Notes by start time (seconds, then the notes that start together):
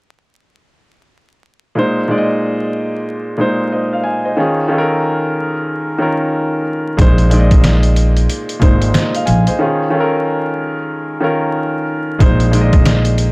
1.75 A#2 G#3 D#4 C5
2.08 A#2 G#3 D#4 D5
2.18 D#5
3.37 A#2 G#3 D#4 C5
3.73 C5 D#5
3.93 F5
4.04 F5 G#5
4.25 C5 D#5
4.37 D#3 C#4 F4 G#4
4.68 D#3 C#4 F4 A4
4.78 A#4
5.99 D#3 C#4 F4 A#4
6.97 A#1 A#2 G#3 D#4 C5, kick, closed hi-hat
7.18 closed hi-hat
7.29 A#2 G#3 D#4 D5, closed hi-hat
7.39 D#5
7.51 kick, closed hi-hat
7.64 snare, closed hi-hat
7.83 closed hi-hat
7.96 closed hi-hat
8.17 closed hi-hat
8.29 closed hi-hat
8.49 closed hi-hat
8.59 G#1 A#2 G#3 D#4 C5, kick, closed hi-hat
8.82 closed hi-hat
8.94 C5 D#5, snare, closed hi-hat
9.15 F5, closed hi-hat
9.26 A#1 F5 G#5, closed hi-hat
9.47 C5 D#5, closed hi-hat
9.59 D#3 C#4 F4 G#4
9.90 D#3 C#4 F4 A4
10.00 A#4
11.21 D#3 C#4 F4 A#4
12.19 A#1 A#2 G#3 D#4 C5, kick, closed hi-hat
12.40 closed hi-hat
12.51 A#2 G#3 D#4 D5, closed hi-hat
12.61 D#5
12.73 kick, closed hi-hat
12.86 snare, closed hi-hat
13.05 closed hi-hat
13.18 closed hi-hat